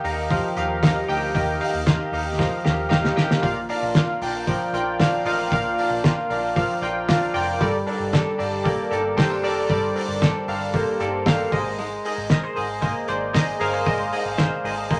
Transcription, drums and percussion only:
0.05 hi-hat pedal medium
0.05 open hi-hat medium
0.31 kick loud
0.31 hi-hat pedal medium
0.31 open hi-hat medium
0.57 hi-hat pedal medium
0.57 open hi-hat medium
0.83 kick loud
0.83 snare loud
0.83 hi-hat pedal medium
0.83 open hi-hat medium
1.09 hi-hat pedal medium
1.09 open hi-hat medium
1.35 kick loud
1.35 hi-hat pedal medium
1.35 open hi-hat medium
1.61 hi-hat pedal medium
1.61 open hi-hat medium
1.86 kick loud
1.86 snare loud
1.86 hi-hat pedal medium
1.86 open hi-hat medium
2.13 hi-hat pedal medium
2.13 open hi-hat medium
2.39 kick loud
2.39 snare medium
2.65 snare medium
2.91 kick loud
2.91 snare loud
3.05 snare medium
3.17 snare medium
3.31 snare loud
3.43 kick loud
3.43 hi-hat pedal medium
3.43 open hi-hat medium
3.69 hi-hat pedal medium
3.69 open hi-hat medium
3.94 kick loud
3.94 snare loud
3.94 hi-hat pedal medium
3.94 open hi-hat medium
4.21 hi-hat pedal medium
4.21 open hi-hat medium
4.47 kick loud
4.47 hi-hat pedal medium
4.47 open hi-hat medium
4.74 hi-hat pedal medium
4.74 open hi-hat medium
5.00 kick loud
5.00 snare loud
5.00 hi-hat pedal medium
5.00 open hi-hat loud
5.25 hi-hat pedal medium
5.25 open hi-hat medium
5.52 kick loud
5.52 hi-hat pedal medium
5.52 open hi-hat medium
5.78 hi-hat pedal medium
5.78 open hi-hat medium
6.04 kick loud
6.04 snare loud
6.04 hi-hat pedal medium
6.04 open hi-hat medium
6.30 hi-hat pedal medium
6.30 open hi-hat medium
6.56 kick loud
6.56 hi-hat pedal medium
6.56 open hi-hat medium
6.83 hi-hat pedal medium
6.83 open hi-hat medium
7.08 kick loud
7.08 snare loud
7.08 hi-hat pedal medium
7.08 open hi-hat medium
7.34 hi-hat pedal medium
7.34 open hi-hat medium
7.61 kick loud
7.61 hi-hat pedal medium
7.61 open hi-hat medium
7.87 hi-hat pedal medium
7.87 open hi-hat medium
8.13 kick loud
8.13 snare loud
8.13 hi-hat pedal medium
8.13 open hi-hat medium
8.40 hi-hat pedal medium
8.40 open hi-hat medium
8.65 kick loud
8.65 hi-hat pedal medium
8.65 open hi-hat medium
8.92 hi-hat pedal medium
8.92 open hi-hat medium
9.18 kick loud
9.18 snare loud
9.18 hi-hat pedal medium
9.18 open hi-hat medium
9.44 hi-hat pedal medium
9.44 open hi-hat medium
9.70 kick loud
9.70 hi-hat pedal medium
9.70 open hi-hat medium
9.96 hi-hat pedal medium
9.96 open hi-hat medium
10.22 kick loud
10.22 snare loud
10.22 hi-hat pedal medium
10.22 open hi-hat medium
10.48 hi-hat pedal medium
10.48 open hi-hat medium
10.74 kick loud
10.74 hi-hat pedal medium
10.74 open hi-hat medium
11.00 hi-hat pedal medium
11.00 open hi-hat medium
11.26 kick loud
11.26 snare loud
11.26 hi-hat pedal medium
11.26 open hi-hat medium
11.52 kick loud
11.52 hi-hat pedal medium
11.52 open hi-hat medium
11.78 hi-hat pedal medium
11.78 open hi-hat medium
12.04 hi-hat pedal medium
12.04 open hi-hat medium
12.29 kick loud
12.29 snare loud
12.29 hi-hat pedal medium
12.29 open hi-hat medium
12.56 hi-hat pedal medium
12.56 open hi-hat medium
12.82 kick loud
12.82 hi-hat pedal medium
12.82 open hi-hat medium
13.08 hi-hat pedal medium
13.08 open hi-hat medium
13.34 kick loud
13.34 snare loud
13.34 hi-hat pedal medium
13.34 open hi-hat medium
13.60 hi-hat pedal medium
13.60 open hi-hat medium
13.87 kick loud
13.87 hi-hat pedal medium
13.87 open hi-hat medium
14.12 hi-hat pedal medium
14.12 open hi-hat medium
14.38 kick loud
14.38 snare loud
14.38 hi-hat pedal medium
14.38 open hi-hat medium
14.65 hi-hat pedal medium
14.65 open hi-hat medium
14.91 kick loud
14.91 hi-hat pedal medium
14.91 open hi-hat medium

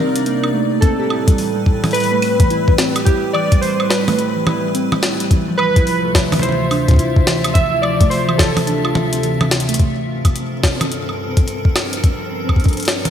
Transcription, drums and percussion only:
0.16 closed hi-hat medium
0.26 closed hi-hat soft
0.44 high woodblock medium
0.82 kick loud
0.82 closed hi-hat medium
1.10 high woodblock medium
1.28 kick loud
1.28 closed hi-hat medium
1.38 open hi-hat medium
1.66 kick medium
1.84 mid tom medium
1.84 open hi-hat soft
1.84 high woodblock soft
1.91 closed hi-hat medium
1.91 open hi-hat medium
1.94 open hi-hat medium
2.00 open hi-hat medium
2.04 open hi-hat medium
2.22 open hi-hat medium
2.22 high woodblock medium
2.40 kick loud
2.40 closed hi-hat medium
2.50 closed hi-hat soft
2.68 kick loud
2.78 snare loud
2.96 closed hi-hat medium
2.96 high woodblock medium
3.06 kick loud
3.06 closed hi-hat medium
3.34 high woodblock medium
3.52 kick loud
3.52 closed hi-hat medium
3.63 open hi-hat medium
3.80 high woodblock medium
3.90 snare loud
4.08 mid tom medium
4.08 open hi-hat medium
4.08 high woodblock soft
4.19 closed hi-hat soft
4.47 mid tom loud
4.47 high woodblock medium
4.75 closed hi-hat medium
4.92 mid tom medium
4.92 high woodblock medium
5.03 snare loud
5.20 closed hi-hat medium
5.31 kick loud
5.31 closed hi-hat medium
5.59 high woodblock medium
5.76 kick loud
5.76 closed hi-hat medium
5.87 open hi-hat medium
6.15 kick medium
6.15 snare loud
6.32 mid tom medium
6.32 open hi-hat medium
6.32 high woodblock soft
6.39 closed hi-hat soft
6.39 mid tom medium
6.43 mid tom soft
6.49 mid tom soft
6.52 mid tom soft
6.71 open hi-hat medium
6.71 high woodblock medium
6.88 kick loud
6.88 closed hi-hat medium
6.91 kick medium
6.94 kick medium
6.96 kick medium
6.96 closed hi-hat medium
7.16 kick loud
7.27 snare loud
7.44 closed hi-hat medium
7.44 high woodblock medium
7.55 kick loud
7.55 closed hi-hat medium
7.83 high woodblock medium
8.01 kick loud
8.01 closed hi-hat medium
8.11 open hi-hat medium
8.29 high woodblock medium
8.39 kick medium
8.39 snare loud
8.57 mid tom medium
8.57 open hi-hat medium
8.57 high woodblock soft
8.67 closed hi-hat medium
8.85 high woodblock medium
8.95 mid tom loud
9.13 closed hi-hat medium
9.23 closed hi-hat medium
9.41 mid tom medium
9.41 high woodblock medium
9.51 snare loud
9.51 closed hi-hat medium
9.60 closed hi-hat medium
9.69 closed hi-hat medium
9.74 closed hi-hat medium
9.79 kick loud
9.79 closed hi-hat medium
10.25 kick loud
10.25 closed hi-hat medium
10.25 high woodblock medium
10.36 closed hi-hat medium
10.63 kick medium
10.63 snare loud
10.81 closed hi-hat medium
10.81 mid tom medium
10.81 high woodblock medium
10.92 closed hi-hat medium
11.09 high woodblock soft
11.37 kick loud
11.37 closed hi-hat medium
11.48 closed hi-hat medium
11.65 kick loud
11.76 snare loud
11.76 high woodblock medium
11.93 closed hi-hat medium
12.04 kick loud
12.04 closed hi-hat medium
12.49 kick medium
12.49 high woodblock medium
12.56 kick medium
12.56 closed hi-hat soft
12.64 kick medium
12.64 closed hi-hat soft
12.68 closed hi-hat soft
12.73 closed hi-hat soft
12.77 closed hi-hat soft
12.80 closed hi-hat soft
12.83 closed hi-hat soft
12.85 snare loud
12.85 closed hi-hat soft
13.05 closed hi-hat medium
13.05 mid tom medium

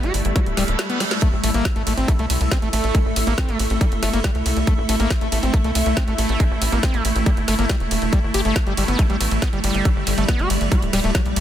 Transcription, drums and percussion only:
0.03 closed hi-hat soft
0.14 open hi-hat loud
0.25 closed hi-hat medium
0.36 kick loud
0.36 closed hi-hat medium
0.46 closed hi-hat soft
0.57 snare soft
0.57 open hi-hat loud
0.68 closed hi-hat medium
0.79 snare loud
0.79 closed hi-hat medium
0.90 closed hi-hat soft
1.00 snare medium
1.00 open hi-hat medium
1.11 snare medium
1.11 closed hi-hat medium
1.22 kick loud
1.22 closed hi-hat medium
1.22 ride medium
1.44 open hi-hat loud
1.44 ride medium
1.54 closed hi-hat medium
1.65 kick loud
1.65 snare loud
1.65 closed hi-hat medium
1.76 closed hi-hat soft
1.87 open hi-hat loud
1.87 ride medium
1.98 closed hi-hat medium
2.08 kick loud
2.08 closed hi-hat medium
2.08 ride medium
2.19 closed hi-hat soft
2.30 open hi-hat loud
2.30 ride medium
2.41 closed hi-hat medium
2.51 kick loud
2.51 snare loud
2.51 closed hi-hat medium
2.62 closed hi-hat soft
2.73 open hi-hat loud
2.73 ride medium
2.84 closed hi-hat medium
2.95 kick loud
2.95 closed hi-hat medium
2.95 ride medium
3.16 open hi-hat loud
3.16 ride medium
3.27 closed hi-hat medium
3.38 kick loud
3.38 snare loud
3.38 closed hi-hat medium
3.38 ride medium
3.49 closed hi-hat soft
3.59 open hi-hat loud
3.59 ride medium
3.70 closed hi-hat medium
3.81 kick loud
3.81 closed hi-hat medium
3.81 ride medium
3.92 closed hi-hat soft
4.03 snare soft
4.03 open hi-hat loud
4.03 ride medium
4.13 closed hi-hat medium
4.24 kick loud
4.24 snare loud
4.24 closed hi-hat medium
4.24 ride medium
4.35 closed hi-hat soft
4.46 open hi-hat loud
4.46 ride medium
4.57 closed hi-hat medium
4.67 kick loud
4.67 closed hi-hat medium
4.67 ride medium
4.89 open hi-hat loud
4.89 ride medium
5.00 closed hi-hat medium
5.10 kick loud
5.10 snare loud
5.10 closed hi-hat medium
5.10 ride medium
5.21 closed hi-hat soft
5.32 open hi-hat loud
5.32 ride medium
5.43 closed hi-hat medium
5.54 kick loud
5.54 closed hi-hat medium
5.54 ride medium
5.64 closed hi-hat soft
5.75 open hi-hat loud
5.75 ride medium
5.86 closed hi-hat medium
5.97 kick loud
5.97 snare loud
5.97 closed hi-hat medium
6.08 closed hi-hat soft
6.18 open hi-hat loud
6.18 ride medium
6.29 closed hi-hat medium
6.40 kick loud
6.40 closed hi-hat medium
6.40 ride medium
6.62 open hi-hat loud
6.62 ride medium
6.72 closed hi-hat medium
6.83 kick loud
6.83 snare loud
6.83 closed hi-hat medium
6.83 ride medium
6.94 closed hi-hat soft
7.05 open hi-hat loud
7.05 ride medium
7.16 closed hi-hat medium
7.26 kick loud
7.26 closed hi-hat medium
7.26 ride medium
7.37 closed hi-hat soft
7.48 snare soft
7.48 open hi-hat loud
7.48 ride medium
7.59 closed hi-hat medium
7.69 kick loud
7.69 snare loud
7.69 closed hi-hat medium
7.80 closed hi-hat soft
7.91 open hi-hat loud
7.91 ride medium
8.02 closed hi-hat medium
8.13 kick loud
8.13 closed hi-hat medium
8.13 ride medium
8.34 open hi-hat loud
8.34 ride medium
8.45 closed hi-hat soft
8.56 kick loud
8.56 snare loud
8.56 closed hi-hat medium
8.56 ride medium
8.67 closed hi-hat soft
8.77 open hi-hat loud
8.77 ride medium
8.88 closed hi-hat medium
8.99 kick loud
8.99 closed hi-hat medium
8.99 ride medium
9.10 closed hi-hat soft
9.21 open hi-hat loud
9.21 ride medium
9.31 closed hi-hat medium
9.42 kick loud
9.42 snare loud
9.42 closed hi-hat medium
9.42 ride medium
9.53 closed hi-hat soft
9.64 open hi-hat loud
9.64 ride medium
9.75 closed hi-hat soft
9.85 kick loud
9.85 closed hi-hat medium
9.85 ride medium
10.07 open hi-hat loud
10.07 ride medium
10.18 closed hi-hat medium
10.28 kick loud
10.28 snare loud
10.28 closed hi-hat medium
10.28 ride medium
10.39 closed hi-hat soft
10.50 open hi-hat medium
10.50 ride medium
10.61 closed hi-hat medium
10.72 kick loud
10.72 closed hi-hat medium
10.72 ride medium
10.82 closed hi-hat soft
10.93 snare soft
10.93 open hi-hat loud
10.93 ride medium
11.04 closed hi-hat soft
11.15 kick loud
11.15 snare loud
11.15 closed hi-hat medium
11.15 ride medium
11.26 closed hi-hat soft
11.36 open hi-hat medium
11.36 ride medium

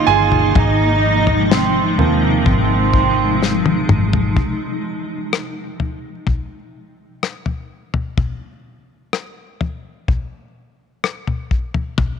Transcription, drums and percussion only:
0.32 floor tom medium
0.55 kick loud
0.55 floor tom loud
1.27 floor tom medium
1.52 snare loud
1.99 floor tom medium
2.46 kick medium
2.46 floor tom medium
2.93 kick medium
3.43 snare medium
3.66 high tom medium
3.89 mid tom medium
4.13 floor tom medium
4.37 kick loud
4.37 floor tom medium
5.33 cross-stick medium
5.80 floor tom medium
6.27 kick medium
6.27 floor tom medium
7.23 cross-stick medium
7.46 floor tom soft
7.94 floor tom medium
8.18 kick medium
8.18 floor tom medium
9.13 cross-stick medium
9.61 floor tom medium
10.08 kick medium
10.08 floor tom medium
11.04 cross-stick medium
11.27 floor tom soft
11.51 kick medium
11.74 floor tom medium
11.98 kick loud
11.98 floor tom medium

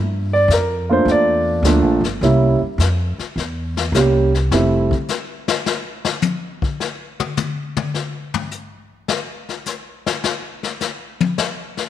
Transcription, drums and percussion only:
0.50 snare medium
0.50 hi-hat pedal medium
1.08 brush sweep soft
1.08 snare soft
1.64 snare medium
1.64 hi-hat pedal medium
2.04 snare soft
2.22 brush sweep soft
2.22 snare soft
2.79 snare medium
2.79 hi-hat pedal medium
3.19 snare soft
3.38 brush sweep soft
3.38 snare soft
3.77 snare soft
3.94 snare medium
3.94 hi-hat pedal medium
4.34 snare soft
4.52 snare medium
4.91 kick medium
5.08 snare soft
5.08 hi-hat pedal soft
5.48 snare medium
5.66 snare medium
6.05 snare medium
6.22 hi-hat pedal medium
6.22 high tom medium
6.62 kick medium
6.80 snare soft
7.20 mid tom medium
7.37 hi-hat pedal medium
7.37 mid tom medium
7.77 mid tom medium
7.94 snare soft
8.34 floor tom medium
8.51 hi-hat pedal medium
9.08 snare medium
9.49 snare soft
9.66 snare soft
9.66 hi-hat pedal medium
10.06 snare medium
10.24 snare medium
10.63 snare soft
10.80 snare soft
10.80 hi-hat pedal medium
11.21 high tom medium
11.38 snare medium
11.77 snare soft

